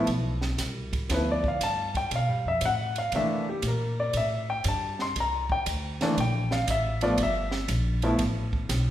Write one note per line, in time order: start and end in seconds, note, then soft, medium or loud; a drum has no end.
0.07 0.57 B1 medium
0.07 kick soft
0.07 ride medium
0.42 snare soft
0.58 1.08 C2 medium
0.58 kick soft
0.58 snare soft
0.58 hi-hat pedal medium
0.58 ride medium
0.93 kick medium
0.93 ride soft
1.09 1.59 D2 medium
1.09 1.41 F3 medium
1.09 1.42 A3 soft
1.09 1.41 B3 soft
1.09 1.42 E4 medium
1.09 kick soft
1.09 snare soft
1.09 ride medium
1.14 1.28 B4 medium
1.32 1.46 D5 medium
1.44 kick medium
1.48 1.62 F5 medium
1.60 2.10 G2 medium
1.60 1.95 A5 medium
1.60 kick soft
1.60 hi-hat pedal medium
1.60 ride medium
1.95 2.12 G5 medium
1.95 kick soft
1.95 ride soft
2.11 2.28 B2 medium
2.11 kick soft
2.11 ride medium
2.16 2.47 F5 medium
2.28 2.44 G2 medium
2.45 2.61 F2 medium
2.45 2.63 E5 medium
2.61 3.11 A2 medium
2.61 kick soft
2.61 hi-hat pedal medium
2.61 ride medium
2.65 2.97 F#5 medium
2.96 3.13 F5 medium
2.96 ride soft
3.12 3.62 C3 medium
3.12 3.45 E3 medium
3.12 3.45 A3 medium
3.12 3.44 A#3 medium
3.12 3.45 D4 medium
3.12 3.47 E5 medium
3.12 kick soft
3.12 ride medium
3.49 3.64 G4 medium
3.62 4.12 A#2 medium
3.62 kick soft
3.62 hi-hat pedal soft
3.62 ride medium
3.68 3.99 A#4 medium
4.00 4.15 D5 medium
4.13 4.63 A2 medium
4.13 4.49 E5 medium
4.13 kick soft
4.13 ride medium
4.50 4.65 G5 medium
4.64 5.14 G2 medium
4.64 kick soft
4.64 hi-hat pedal medium
4.64 ride medium
4.68 5.00 A5 medium
4.99 5.16 C6 medium
4.99 snare soft
5.15 5.65 C2 medium
5.15 kick soft
5.15 ride medium
5.20 5.51 A#5 medium
5.50 5.61 G5 medium
5.50 kick medium
5.66 6.15 D2 medium
5.66 kick soft
5.66 hi-hat pedal medium
5.66 ride medium
6.01 6.16 E3 medium
6.01 6.16 A3 medium
6.01 6.16 A#3 medium
6.01 6.16 D4 medium
6.01 snare medium
6.01 ride soft
6.17 6.66 A#1 medium
6.17 6.52 G5 medium
6.17 kick soft
6.17 ride medium
6.51 6.68 F5 medium
6.51 snare medium
6.67 7.16 A1 loud
6.67 7.02 E5 medium
6.67 kick soft
6.67 hi-hat pedal medium
6.67 ride medium
7.01 7.17 F3 medium
7.01 7.17 A3 medium
7.01 7.17 B3 medium
7.01 7.17 F4 medium
7.01 7.18 D5 medium
7.01 ride medium
7.18 7.67 G1 medium
7.18 kick soft
7.18 ride medium
7.23 7.68 E5 medium
7.51 snare medium
7.68 8.17 A#1 loud
7.68 kick soft
7.68 hi-hat pedal medium
7.68 ride medium
8.02 8.18 F3 medium
8.02 8.18 A3 medium
8.02 8.18 B3 medium
8.02 8.18 E4 medium
8.02 ride soft
8.19 8.68 A1 medium
8.19 kick soft
8.19 ride medium
8.53 kick medium
8.69 8.90 B1 loud
8.69 kick soft
8.69 snare soft
8.69 hi-hat pedal medium
8.69 ride medium